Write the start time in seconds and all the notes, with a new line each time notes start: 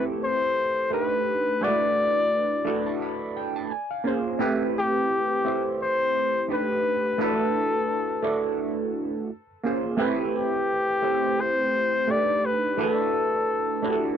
Already playing: A3 C4 E4 G4 A4 B4
0.24 C5
0.90 A3 D4 D#4 G4 B4
1.61 G#3 D4 E4 F#4 B4 D5
1.68 A3
2.65 A3 D4 E4 F#4 A4 B5
2.86 A5
3.02 B5
3.37 G5
3.56 A5
3.71 G#5
3.91 F5
4.04 A#3 C#4 F4 G#4 C5
4.39 A3 C4 E4 G4 B4
4.78 G4
5.45 A3 C4 E4 G4 C5
5.82 C5
6.48 A3 D4 D#4 G4 B4
6.54 B4
7.18 A3 D4 E4 F#4 B4
7.23 A4
8.23 A3 D4 E4 F#4 A4
9.63 A#3 C#4 F4 G#4 C5
9.97 A3 C4 E4 G4 B4
10.36 G4
11.02 A3 C4 E4 G4 C5
11.40 C5
12.07 A3 D4 D#4 G4 A4 D5
12.17 B4
12.45 B4
12.77 A3 D4 E4 F#4 B4
12.82 A4
13.82 A3 D4 E4 F#4 G4
13.92 A4